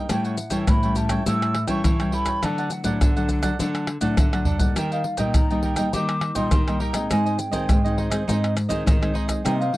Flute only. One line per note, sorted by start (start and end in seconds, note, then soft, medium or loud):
0.11 0.26 G5 loud
0.25 0.54 F#5 medium
0.52 0.70 G5 medium
0.69 0.99 B5 medium
0.97 1.26 A5 medium
1.27 1.67 E6 loud
1.69 2.15 C#6 loud
2.14 2.46 B5 loud
2.44 2.74 A5 medium
2.72 3.31 F#5 medium
4.77 4.94 G5 medium
4.92 5.20 F5 medium
5.19 5.37 G5 medium
5.35 5.62 A#5 medium
5.63 5.94 G5 medium
5.93 6.37 D6 loud
6.35 6.81 C6 loud
6.79 7.10 A#5 loud
7.11 7.40 G#5 loud
7.39 7.98 G5 medium
9.44 9.58 G5 loud
9.59 9.77 F5 medium